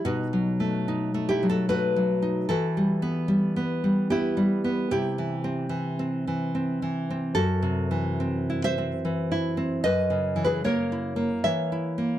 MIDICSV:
0, 0, Header, 1, 2, 480
1, 0, Start_track
1, 0, Tempo, 808625
1, 29, Time_signature, 3, 2, 24, 8
1, 3388, Tempo, 835655
1, 5308, Tempo, 795756
1, 7201, End_track
2, 0, Start_track
2, 0, Title_t, "Nylon-string guitar"
2, 0, Program_c, 0, 24
2, 29, Note_on_c, 0, 47, 69
2, 29, Note_on_c, 0, 66, 86
2, 36, Note_on_c, 0, 63, 64
2, 195, Note_on_c, 0, 54, 53
2, 356, Note_on_c, 0, 57, 53
2, 515, Note_off_c, 0, 63, 0
2, 522, Note_on_c, 0, 63, 58
2, 672, Note_off_c, 0, 57, 0
2, 679, Note_on_c, 0, 57, 55
2, 737, Note_off_c, 0, 66, 0
2, 764, Note_on_c, 0, 67, 89
2, 773, Note_on_c, 0, 64, 63
2, 840, Note_off_c, 0, 54, 0
2, 847, Note_on_c, 0, 54, 52
2, 878, Note_off_c, 0, 64, 0
2, 881, Note_off_c, 0, 67, 0
2, 887, Note_on_c, 0, 69, 86
2, 895, Note_on_c, 0, 66, 67
2, 995, Note_off_c, 0, 57, 0
2, 999, Note_off_c, 0, 66, 0
2, 1001, Note_off_c, 0, 69, 0
2, 1001, Note_on_c, 0, 57, 52
2, 1003, Note_on_c, 0, 71, 87
2, 1010, Note_on_c, 0, 66, 69
2, 1158, Note_off_c, 0, 54, 0
2, 1165, Note_on_c, 0, 54, 55
2, 1241, Note_off_c, 0, 63, 0
2, 1320, Note_on_c, 0, 63, 59
2, 1456, Note_off_c, 0, 47, 0
2, 1461, Note_off_c, 0, 66, 0
2, 1461, Note_off_c, 0, 71, 0
2, 1477, Note_on_c, 0, 69, 94
2, 1479, Note_off_c, 0, 54, 0
2, 1479, Note_off_c, 0, 63, 0
2, 1480, Note_off_c, 0, 57, 0
2, 1482, Note_on_c, 0, 52, 66
2, 1487, Note_on_c, 0, 66, 75
2, 1644, Note_on_c, 0, 55, 54
2, 1794, Note_on_c, 0, 59, 56
2, 1941, Note_off_c, 0, 55, 0
2, 1948, Note_on_c, 0, 55, 61
2, 2108, Note_off_c, 0, 59, 0
2, 2115, Note_on_c, 0, 59, 55
2, 2271, Note_off_c, 0, 55, 0
2, 2278, Note_on_c, 0, 55, 55
2, 2406, Note_off_c, 0, 69, 0
2, 2412, Note_off_c, 0, 66, 0
2, 2429, Note_off_c, 0, 59, 0
2, 2436, Note_on_c, 0, 59, 51
2, 2436, Note_on_c, 0, 67, 83
2, 2444, Note_on_c, 0, 64, 69
2, 2586, Note_off_c, 0, 55, 0
2, 2593, Note_on_c, 0, 55, 61
2, 2749, Note_off_c, 0, 59, 0
2, 2756, Note_on_c, 0, 59, 59
2, 2888, Note_off_c, 0, 52, 0
2, 2893, Note_off_c, 0, 64, 0
2, 2893, Note_off_c, 0, 67, 0
2, 2910, Note_off_c, 0, 55, 0
2, 2912, Note_off_c, 0, 59, 0
2, 2916, Note_on_c, 0, 48, 67
2, 2917, Note_on_c, 0, 67, 89
2, 2923, Note_on_c, 0, 64, 65
2, 3077, Note_on_c, 0, 52, 57
2, 3230, Note_on_c, 0, 60, 60
2, 3373, Note_off_c, 0, 52, 0
2, 3380, Note_on_c, 0, 52, 63
2, 3545, Note_off_c, 0, 60, 0
2, 3552, Note_on_c, 0, 60, 57
2, 3607, Note_off_c, 0, 67, 0
2, 3610, Note_off_c, 0, 64, 0
2, 3707, Note_off_c, 0, 52, 0
2, 3714, Note_on_c, 0, 52, 53
2, 3864, Note_off_c, 0, 60, 0
2, 3870, Note_on_c, 0, 60, 54
2, 4022, Note_off_c, 0, 52, 0
2, 4029, Note_on_c, 0, 52, 61
2, 4184, Note_off_c, 0, 60, 0
2, 4190, Note_on_c, 0, 60, 61
2, 4315, Note_off_c, 0, 48, 0
2, 4330, Note_on_c, 0, 69, 101
2, 4333, Note_on_c, 0, 42, 72
2, 4337, Note_off_c, 0, 52, 0
2, 4340, Note_off_c, 0, 60, 0
2, 4340, Note_on_c, 0, 66, 74
2, 4489, Note_on_c, 0, 48, 62
2, 4652, Note_on_c, 0, 52, 57
2, 4819, Note_on_c, 0, 60, 59
2, 4990, Note_on_c, 0, 64, 61
2, 5049, Note_off_c, 0, 69, 0
2, 5054, Note_off_c, 0, 66, 0
2, 5073, Note_on_c, 0, 76, 108
2, 5074, Note_off_c, 0, 64, 0
2, 5077, Note_on_c, 0, 72, 80
2, 5146, Note_off_c, 0, 60, 0
2, 5153, Note_on_c, 0, 60, 57
2, 5232, Note_off_c, 0, 48, 0
2, 5300, Note_off_c, 0, 52, 0
2, 5306, Note_on_c, 0, 52, 55
2, 5466, Note_off_c, 0, 76, 0
2, 5468, Note_on_c, 0, 64, 67
2, 5616, Note_off_c, 0, 60, 0
2, 5623, Note_on_c, 0, 60, 61
2, 5755, Note_off_c, 0, 42, 0
2, 5757, Note_off_c, 0, 72, 0
2, 5779, Note_off_c, 0, 52, 0
2, 5780, Note_off_c, 0, 60, 0
2, 5781, Note_off_c, 0, 64, 0
2, 5783, Note_on_c, 0, 42, 70
2, 5783, Note_on_c, 0, 75, 102
2, 5791, Note_on_c, 0, 71, 76
2, 5942, Note_on_c, 0, 49, 55
2, 6097, Note_on_c, 0, 52, 58
2, 6124, Note_off_c, 0, 71, 0
2, 6129, Note_off_c, 0, 75, 0
2, 6149, Note_on_c, 0, 71, 85
2, 6157, Note_on_c, 0, 68, 67
2, 6263, Note_off_c, 0, 68, 0
2, 6267, Note_off_c, 0, 52, 0
2, 6267, Note_off_c, 0, 71, 0
2, 6269, Note_on_c, 0, 58, 58
2, 6272, Note_on_c, 0, 73, 97
2, 6278, Note_on_c, 0, 70, 73
2, 6436, Note_on_c, 0, 64, 57
2, 6574, Note_off_c, 0, 58, 0
2, 6581, Note_on_c, 0, 58, 56
2, 6667, Note_off_c, 0, 49, 0
2, 6730, Note_off_c, 0, 70, 0
2, 6731, Note_off_c, 0, 73, 0
2, 6749, Note_on_c, 0, 76, 93
2, 6751, Note_off_c, 0, 42, 0
2, 6753, Note_on_c, 0, 52, 52
2, 6761, Note_on_c, 0, 73, 69
2, 6911, Note_off_c, 0, 64, 0
2, 6919, Note_on_c, 0, 64, 58
2, 7067, Note_off_c, 0, 58, 0
2, 7074, Note_on_c, 0, 58, 55
2, 7201, Note_off_c, 0, 52, 0
2, 7201, Note_off_c, 0, 58, 0
2, 7201, Note_off_c, 0, 64, 0
2, 7201, Note_off_c, 0, 73, 0
2, 7201, Note_off_c, 0, 76, 0
2, 7201, End_track
0, 0, End_of_file